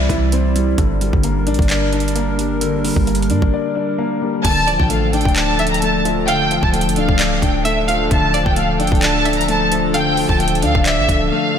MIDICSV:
0, 0, Header, 1, 7, 480
1, 0, Start_track
1, 0, Key_signature, -1, "minor"
1, 0, Tempo, 458015
1, 820, Time_signature, 4, 2, 24, 8
1, 12145, End_track
2, 0, Start_track
2, 0, Title_t, "Violin section"
2, 0, Program_c, 0, 48
2, 4660, Note_on_c, 0, 81, 119
2, 5005, Note_off_c, 0, 81, 0
2, 5024, Note_on_c, 0, 79, 80
2, 5113, Note_off_c, 0, 79, 0
2, 5139, Note_on_c, 0, 77, 86
2, 5326, Note_off_c, 0, 77, 0
2, 5377, Note_on_c, 0, 79, 91
2, 5565, Note_off_c, 0, 79, 0
2, 5620, Note_on_c, 0, 81, 90
2, 5965, Note_off_c, 0, 81, 0
2, 5986, Note_on_c, 0, 82, 84
2, 6074, Note_off_c, 0, 82, 0
2, 6098, Note_on_c, 0, 81, 89
2, 6286, Note_off_c, 0, 81, 0
2, 6582, Note_on_c, 0, 79, 115
2, 6926, Note_off_c, 0, 79, 0
2, 6945, Note_on_c, 0, 81, 82
2, 7034, Note_off_c, 0, 81, 0
2, 7062, Note_on_c, 0, 79, 80
2, 7248, Note_off_c, 0, 79, 0
2, 7297, Note_on_c, 0, 77, 87
2, 7750, Note_off_c, 0, 77, 0
2, 7779, Note_on_c, 0, 79, 77
2, 7966, Note_off_c, 0, 79, 0
2, 8017, Note_on_c, 0, 76, 86
2, 8205, Note_off_c, 0, 76, 0
2, 8259, Note_on_c, 0, 77, 88
2, 8446, Note_off_c, 0, 77, 0
2, 8502, Note_on_c, 0, 81, 97
2, 8846, Note_off_c, 0, 81, 0
2, 8862, Note_on_c, 0, 79, 82
2, 8952, Note_off_c, 0, 79, 0
2, 8988, Note_on_c, 0, 77, 79
2, 9171, Note_off_c, 0, 77, 0
2, 9221, Note_on_c, 0, 79, 83
2, 9408, Note_off_c, 0, 79, 0
2, 9463, Note_on_c, 0, 81, 96
2, 9806, Note_off_c, 0, 81, 0
2, 9826, Note_on_c, 0, 82, 83
2, 9914, Note_off_c, 0, 82, 0
2, 9943, Note_on_c, 0, 81, 98
2, 10129, Note_off_c, 0, 81, 0
2, 10423, Note_on_c, 0, 79, 104
2, 10766, Note_off_c, 0, 79, 0
2, 10789, Note_on_c, 0, 81, 94
2, 10876, Note_off_c, 0, 81, 0
2, 10900, Note_on_c, 0, 79, 79
2, 11086, Note_off_c, 0, 79, 0
2, 11139, Note_on_c, 0, 77, 100
2, 11326, Note_off_c, 0, 77, 0
2, 11380, Note_on_c, 0, 76, 102
2, 11831, Note_off_c, 0, 76, 0
2, 11849, Note_on_c, 0, 77, 92
2, 12145, Note_off_c, 0, 77, 0
2, 12145, End_track
3, 0, Start_track
3, 0, Title_t, "Synth pluck"
3, 0, Program_c, 1, 84
3, 4898, Note_on_c, 1, 74, 79
3, 5817, Note_off_c, 1, 74, 0
3, 5861, Note_on_c, 1, 76, 87
3, 6089, Note_off_c, 1, 76, 0
3, 6583, Note_on_c, 1, 77, 101
3, 7979, Note_off_c, 1, 77, 0
3, 8016, Note_on_c, 1, 76, 101
3, 8246, Note_off_c, 1, 76, 0
3, 8257, Note_on_c, 1, 77, 87
3, 8486, Note_off_c, 1, 77, 0
3, 8739, Note_on_c, 1, 74, 91
3, 9657, Note_off_c, 1, 74, 0
3, 9697, Note_on_c, 1, 76, 79
3, 9926, Note_off_c, 1, 76, 0
3, 10417, Note_on_c, 1, 77, 105
3, 12145, Note_off_c, 1, 77, 0
3, 12145, End_track
4, 0, Start_track
4, 0, Title_t, "Analog synth pad"
4, 0, Program_c, 2, 89
4, 0, Note_on_c, 2, 55, 83
4, 0, Note_on_c, 2, 64, 77
4, 0, Note_on_c, 2, 74, 94
4, 781, Note_off_c, 2, 64, 0
4, 801, Note_off_c, 2, 74, 0
4, 820, Note_on_c, 2, 62, 81
4, 820, Note_on_c, 2, 70, 97
4, 4618, Note_off_c, 2, 55, 0
4, 4621, Note_off_c, 2, 62, 0
4, 4621, Note_off_c, 2, 70, 0
4, 4660, Note_on_c, 2, 53, 85
4, 4660, Note_on_c, 2, 69, 95
4, 4661, Note_on_c, 2, 62, 78
4, 12145, Note_off_c, 2, 53, 0
4, 12145, Note_off_c, 2, 62, 0
4, 12145, Note_off_c, 2, 69, 0
4, 12145, End_track
5, 0, Start_track
5, 0, Title_t, "Grand piano"
5, 0, Program_c, 3, 0
5, 0, Control_c, 3, 64, 127
5, 0, Note_on_c, 3, 52, 86
5, 0, Note_on_c, 3, 55, 68
5, 0, Note_on_c, 3, 60, 79
5, 0, Note_on_c, 3, 64, 92
5, 0, Note_on_c, 3, 76, 85
5, 93, Note_off_c, 3, 64, 0
5, 93, Note_on_c, 3, 64, 87
5, 330, Note_off_c, 3, 60, 0
5, 339, Note_off_c, 3, 55, 0
5, 346, Note_on_c, 3, 60, 99
5, 584, Note_on_c, 3, 55, 78
5, 816, Note_off_c, 3, 64, 0
5, 819, Note_off_c, 3, 76, 0
5, 822, Note_off_c, 3, 55, 0
5, 823, Note_off_c, 3, 60, 0
5, 823, Note_on_c, 3, 50, 84
5, 835, Control_c, 3, 64, 0
5, 845, Note_off_c, 3, 52, 0
5, 1035, Control_c, 3, 64, 127
5, 1060, Note_on_c, 3, 55, 79
5, 1301, Note_on_c, 3, 58, 79
5, 1539, Note_on_c, 3, 62, 98
5, 1781, Note_on_c, 3, 74, 81
5, 2005, Note_off_c, 3, 62, 0
5, 2021, Note_off_c, 3, 50, 0
5, 2021, Note_on_c, 3, 62, 93
5, 2244, Note_off_c, 3, 58, 0
5, 2259, Note_on_c, 3, 58, 93
5, 2260, Note_off_c, 3, 55, 0
5, 2498, Note_on_c, 3, 55, 72
5, 2740, Note_on_c, 3, 50, 88
5, 2968, Note_off_c, 3, 55, 0
5, 2980, Note_off_c, 3, 74, 0
5, 2983, Note_on_c, 3, 55, 78
5, 3205, Note_off_c, 3, 58, 0
5, 3220, Note_off_c, 3, 62, 0
5, 3221, Note_on_c, 3, 58, 79
5, 3458, Note_on_c, 3, 62, 94
5, 3707, Note_on_c, 3, 74, 81
5, 3917, Note_off_c, 3, 62, 0
5, 3932, Note_on_c, 3, 62, 82
5, 3940, Note_off_c, 3, 50, 0
5, 4160, Note_off_c, 3, 58, 0
5, 4175, Note_on_c, 3, 58, 89
5, 4181, Note_off_c, 3, 55, 0
5, 4418, Note_on_c, 3, 55, 80
5, 4656, Note_off_c, 3, 62, 0
5, 4658, Note_off_c, 3, 58, 0
5, 4659, Note_off_c, 3, 55, 0
5, 4663, Note_off_c, 3, 74, 0
5, 4663, Note_on_c, 3, 50, 94
5, 4673, Control_c, 3, 64, 0
5, 4829, Control_c, 3, 64, 127
5, 4903, Note_on_c, 3, 53, 76
5, 5140, Note_on_c, 3, 57, 80
5, 5380, Note_on_c, 3, 62, 103
5, 5623, Note_on_c, 3, 74, 83
5, 5840, Note_off_c, 3, 62, 0
5, 5856, Note_on_c, 3, 62, 83
5, 5862, Note_off_c, 3, 50, 0
5, 6086, Note_off_c, 3, 57, 0
5, 6102, Note_off_c, 3, 53, 0
5, 6102, Note_on_c, 3, 57, 90
5, 6339, Note_on_c, 3, 53, 78
5, 6582, Note_on_c, 3, 50, 89
5, 6803, Note_off_c, 3, 53, 0
5, 6819, Note_on_c, 3, 53, 74
5, 6821, Note_off_c, 3, 74, 0
5, 7039, Note_off_c, 3, 57, 0
5, 7054, Note_on_c, 3, 57, 77
5, 7058, Note_off_c, 3, 62, 0
5, 7304, Note_on_c, 3, 62, 97
5, 7540, Note_on_c, 3, 74, 87
5, 7760, Note_off_c, 3, 62, 0
5, 7776, Note_on_c, 3, 62, 81
5, 7781, Note_off_c, 3, 50, 0
5, 8001, Note_off_c, 3, 57, 0
5, 8017, Note_on_c, 3, 57, 96
5, 8019, Note_off_c, 3, 53, 0
5, 8267, Note_on_c, 3, 53, 76
5, 8500, Note_on_c, 3, 50, 96
5, 8725, Note_off_c, 3, 53, 0
5, 8740, Note_off_c, 3, 74, 0
5, 8741, Note_on_c, 3, 53, 73
5, 8960, Note_off_c, 3, 57, 0
5, 8976, Note_on_c, 3, 57, 79
5, 8978, Note_off_c, 3, 62, 0
5, 9216, Note_on_c, 3, 62, 102
5, 9462, Note_on_c, 3, 74, 83
5, 9686, Note_off_c, 3, 62, 0
5, 9700, Note_off_c, 3, 50, 0
5, 9701, Note_on_c, 3, 62, 84
5, 9924, Note_off_c, 3, 57, 0
5, 9940, Note_off_c, 3, 53, 0
5, 9940, Note_on_c, 3, 57, 100
5, 10182, Note_on_c, 3, 53, 76
5, 10419, Note_on_c, 3, 50, 92
5, 10642, Note_off_c, 3, 53, 0
5, 10658, Note_on_c, 3, 53, 82
5, 10661, Note_off_c, 3, 74, 0
5, 10884, Note_off_c, 3, 57, 0
5, 10900, Note_off_c, 3, 62, 0
5, 10900, Note_on_c, 3, 57, 82
5, 11135, Note_on_c, 3, 62, 106
5, 11382, Note_on_c, 3, 74, 86
5, 11604, Note_off_c, 3, 62, 0
5, 11619, Note_off_c, 3, 50, 0
5, 11620, Note_on_c, 3, 62, 81
5, 11846, Note_off_c, 3, 57, 0
5, 11859, Note_off_c, 3, 53, 0
5, 11862, Note_on_c, 3, 57, 97
5, 12098, Note_on_c, 3, 53, 70
5, 12145, Note_off_c, 3, 53, 0
5, 12145, Note_off_c, 3, 57, 0
5, 12145, Note_off_c, 3, 62, 0
5, 12145, Note_off_c, 3, 74, 0
5, 12145, End_track
6, 0, Start_track
6, 0, Title_t, "808-style bass"
6, 0, Program_c, 4, 38
6, 99, Note_on_c, 4, 36, 104
6, 791, Note_off_c, 4, 36, 0
6, 819, Note_on_c, 4, 31, 118
6, 1172, Note_off_c, 4, 31, 0
6, 1186, Note_on_c, 4, 31, 101
6, 1539, Note_on_c, 4, 33, 97
6, 1555, Note_off_c, 4, 31, 0
6, 1660, Note_off_c, 4, 33, 0
6, 1665, Note_on_c, 4, 31, 99
6, 3064, Note_off_c, 4, 31, 0
6, 3106, Note_on_c, 4, 31, 104
6, 3459, Note_on_c, 4, 43, 98
6, 3475, Note_off_c, 4, 31, 0
6, 3580, Note_off_c, 4, 43, 0
6, 3586, Note_on_c, 4, 31, 105
6, 3699, Note_off_c, 4, 31, 0
6, 4659, Note_on_c, 4, 26, 113
6, 5012, Note_off_c, 4, 26, 0
6, 5027, Note_on_c, 4, 33, 103
6, 5488, Note_off_c, 4, 33, 0
6, 5506, Note_on_c, 4, 26, 106
6, 6905, Note_off_c, 4, 26, 0
6, 6947, Note_on_c, 4, 26, 104
6, 7186, Note_on_c, 4, 29, 98
6, 7201, Note_off_c, 4, 26, 0
6, 7299, Note_on_c, 4, 26, 103
6, 7315, Note_off_c, 4, 29, 0
6, 7420, Note_off_c, 4, 26, 0
6, 7426, Note_on_c, 4, 26, 105
6, 7765, Note_off_c, 4, 26, 0
6, 7780, Note_on_c, 4, 26, 109
6, 8471, Note_off_c, 4, 26, 0
6, 8500, Note_on_c, 4, 26, 117
6, 8852, Note_off_c, 4, 26, 0
6, 8867, Note_on_c, 4, 26, 106
6, 9220, Note_on_c, 4, 28, 99
6, 9235, Note_off_c, 4, 26, 0
6, 9340, Note_off_c, 4, 28, 0
6, 9346, Note_on_c, 4, 26, 101
6, 10745, Note_off_c, 4, 26, 0
6, 10787, Note_on_c, 4, 26, 105
6, 11139, Note_on_c, 4, 38, 95
6, 11155, Note_off_c, 4, 26, 0
6, 11260, Note_off_c, 4, 38, 0
6, 11266, Note_on_c, 4, 26, 103
6, 11506, Note_on_c, 4, 33, 98
6, 11522, Note_off_c, 4, 26, 0
6, 11614, Note_off_c, 4, 33, 0
6, 11619, Note_on_c, 4, 26, 110
6, 11850, Note_off_c, 4, 26, 0
6, 12145, End_track
7, 0, Start_track
7, 0, Title_t, "Drums"
7, 99, Note_on_c, 9, 36, 94
7, 104, Note_on_c, 9, 42, 79
7, 204, Note_off_c, 9, 36, 0
7, 208, Note_off_c, 9, 42, 0
7, 339, Note_on_c, 9, 42, 75
7, 443, Note_off_c, 9, 42, 0
7, 583, Note_on_c, 9, 42, 83
7, 688, Note_off_c, 9, 42, 0
7, 818, Note_on_c, 9, 42, 87
7, 819, Note_on_c, 9, 36, 115
7, 923, Note_off_c, 9, 42, 0
7, 924, Note_off_c, 9, 36, 0
7, 1061, Note_on_c, 9, 42, 70
7, 1166, Note_off_c, 9, 42, 0
7, 1186, Note_on_c, 9, 36, 92
7, 1291, Note_off_c, 9, 36, 0
7, 1294, Note_on_c, 9, 42, 74
7, 1399, Note_off_c, 9, 42, 0
7, 1538, Note_on_c, 9, 42, 61
7, 1618, Note_off_c, 9, 42, 0
7, 1618, Note_on_c, 9, 42, 50
7, 1665, Note_on_c, 9, 36, 101
7, 1698, Note_off_c, 9, 42, 0
7, 1698, Note_on_c, 9, 42, 38
7, 1770, Note_off_c, 9, 36, 0
7, 1777, Note_off_c, 9, 42, 0
7, 1777, Note_on_c, 9, 42, 78
7, 1778, Note_on_c, 9, 39, 119
7, 1882, Note_off_c, 9, 42, 0
7, 1883, Note_off_c, 9, 39, 0
7, 2018, Note_on_c, 9, 42, 44
7, 2099, Note_off_c, 9, 42, 0
7, 2099, Note_on_c, 9, 42, 60
7, 2179, Note_off_c, 9, 42, 0
7, 2179, Note_on_c, 9, 42, 79
7, 2259, Note_off_c, 9, 42, 0
7, 2259, Note_on_c, 9, 42, 75
7, 2364, Note_off_c, 9, 42, 0
7, 2504, Note_on_c, 9, 42, 89
7, 2608, Note_off_c, 9, 42, 0
7, 2738, Note_on_c, 9, 42, 92
7, 2843, Note_off_c, 9, 42, 0
7, 2982, Note_on_c, 9, 46, 68
7, 3087, Note_off_c, 9, 46, 0
7, 3106, Note_on_c, 9, 36, 90
7, 3211, Note_off_c, 9, 36, 0
7, 3220, Note_on_c, 9, 42, 64
7, 3300, Note_off_c, 9, 42, 0
7, 3300, Note_on_c, 9, 42, 62
7, 3380, Note_off_c, 9, 42, 0
7, 3380, Note_on_c, 9, 42, 60
7, 3456, Note_off_c, 9, 42, 0
7, 3456, Note_on_c, 9, 42, 60
7, 3560, Note_off_c, 9, 42, 0
7, 3586, Note_on_c, 9, 36, 103
7, 3691, Note_off_c, 9, 36, 0
7, 4659, Note_on_c, 9, 36, 120
7, 4659, Note_on_c, 9, 42, 93
7, 4660, Note_on_c, 9, 49, 106
7, 4764, Note_off_c, 9, 36, 0
7, 4764, Note_off_c, 9, 42, 0
7, 4764, Note_off_c, 9, 49, 0
7, 4902, Note_on_c, 9, 42, 70
7, 5007, Note_off_c, 9, 42, 0
7, 5027, Note_on_c, 9, 36, 93
7, 5131, Note_off_c, 9, 36, 0
7, 5135, Note_on_c, 9, 42, 76
7, 5240, Note_off_c, 9, 42, 0
7, 5379, Note_on_c, 9, 42, 66
7, 5459, Note_off_c, 9, 42, 0
7, 5459, Note_on_c, 9, 42, 53
7, 5506, Note_on_c, 9, 36, 108
7, 5539, Note_off_c, 9, 42, 0
7, 5539, Note_on_c, 9, 42, 39
7, 5611, Note_off_c, 9, 36, 0
7, 5618, Note_off_c, 9, 42, 0
7, 5618, Note_on_c, 9, 39, 119
7, 5618, Note_on_c, 9, 42, 78
7, 5723, Note_off_c, 9, 39, 0
7, 5723, Note_off_c, 9, 42, 0
7, 5859, Note_on_c, 9, 42, 48
7, 5939, Note_off_c, 9, 42, 0
7, 5939, Note_on_c, 9, 42, 62
7, 6019, Note_off_c, 9, 42, 0
7, 6019, Note_on_c, 9, 42, 81
7, 6100, Note_off_c, 9, 42, 0
7, 6100, Note_on_c, 9, 42, 75
7, 6204, Note_off_c, 9, 42, 0
7, 6344, Note_on_c, 9, 42, 92
7, 6449, Note_off_c, 9, 42, 0
7, 6579, Note_on_c, 9, 42, 94
7, 6684, Note_off_c, 9, 42, 0
7, 6822, Note_on_c, 9, 42, 69
7, 6927, Note_off_c, 9, 42, 0
7, 6947, Note_on_c, 9, 36, 96
7, 7051, Note_off_c, 9, 36, 0
7, 7060, Note_on_c, 9, 42, 63
7, 7140, Note_off_c, 9, 42, 0
7, 7140, Note_on_c, 9, 42, 64
7, 7220, Note_off_c, 9, 42, 0
7, 7220, Note_on_c, 9, 42, 64
7, 7296, Note_off_c, 9, 42, 0
7, 7296, Note_on_c, 9, 42, 62
7, 7401, Note_off_c, 9, 42, 0
7, 7426, Note_on_c, 9, 36, 106
7, 7531, Note_off_c, 9, 36, 0
7, 7538, Note_on_c, 9, 42, 83
7, 7539, Note_on_c, 9, 39, 119
7, 7643, Note_off_c, 9, 39, 0
7, 7643, Note_off_c, 9, 42, 0
7, 7780, Note_on_c, 9, 36, 96
7, 7784, Note_on_c, 9, 42, 79
7, 7885, Note_off_c, 9, 36, 0
7, 7889, Note_off_c, 9, 42, 0
7, 8020, Note_on_c, 9, 42, 76
7, 8125, Note_off_c, 9, 42, 0
7, 8264, Note_on_c, 9, 42, 85
7, 8369, Note_off_c, 9, 42, 0
7, 8499, Note_on_c, 9, 36, 120
7, 8499, Note_on_c, 9, 42, 92
7, 8604, Note_off_c, 9, 36, 0
7, 8604, Note_off_c, 9, 42, 0
7, 8742, Note_on_c, 9, 42, 70
7, 8847, Note_off_c, 9, 42, 0
7, 8866, Note_on_c, 9, 36, 95
7, 8971, Note_off_c, 9, 36, 0
7, 8975, Note_on_c, 9, 42, 77
7, 9080, Note_off_c, 9, 42, 0
7, 9220, Note_on_c, 9, 42, 66
7, 9299, Note_off_c, 9, 42, 0
7, 9299, Note_on_c, 9, 42, 49
7, 9346, Note_on_c, 9, 36, 107
7, 9380, Note_off_c, 9, 42, 0
7, 9380, Note_on_c, 9, 42, 40
7, 9451, Note_off_c, 9, 36, 0
7, 9459, Note_off_c, 9, 42, 0
7, 9459, Note_on_c, 9, 39, 123
7, 9459, Note_on_c, 9, 42, 81
7, 9563, Note_off_c, 9, 42, 0
7, 9564, Note_off_c, 9, 39, 0
7, 9700, Note_on_c, 9, 42, 47
7, 9780, Note_off_c, 9, 42, 0
7, 9780, Note_on_c, 9, 42, 62
7, 9859, Note_off_c, 9, 42, 0
7, 9859, Note_on_c, 9, 42, 83
7, 9940, Note_off_c, 9, 42, 0
7, 9940, Note_on_c, 9, 42, 76
7, 10044, Note_off_c, 9, 42, 0
7, 10183, Note_on_c, 9, 42, 94
7, 10288, Note_off_c, 9, 42, 0
7, 10419, Note_on_c, 9, 42, 90
7, 10524, Note_off_c, 9, 42, 0
7, 10662, Note_on_c, 9, 46, 73
7, 10767, Note_off_c, 9, 46, 0
7, 10786, Note_on_c, 9, 36, 92
7, 10891, Note_off_c, 9, 36, 0
7, 10900, Note_on_c, 9, 42, 62
7, 10980, Note_off_c, 9, 42, 0
7, 10980, Note_on_c, 9, 42, 63
7, 11059, Note_off_c, 9, 42, 0
7, 11059, Note_on_c, 9, 42, 60
7, 11135, Note_off_c, 9, 42, 0
7, 11135, Note_on_c, 9, 42, 63
7, 11240, Note_off_c, 9, 42, 0
7, 11266, Note_on_c, 9, 36, 107
7, 11371, Note_off_c, 9, 36, 0
7, 11378, Note_on_c, 9, 42, 80
7, 11379, Note_on_c, 9, 39, 119
7, 11483, Note_off_c, 9, 42, 0
7, 11484, Note_off_c, 9, 39, 0
7, 11619, Note_on_c, 9, 36, 95
7, 11625, Note_on_c, 9, 42, 80
7, 11724, Note_off_c, 9, 36, 0
7, 11729, Note_off_c, 9, 42, 0
7, 12145, End_track
0, 0, End_of_file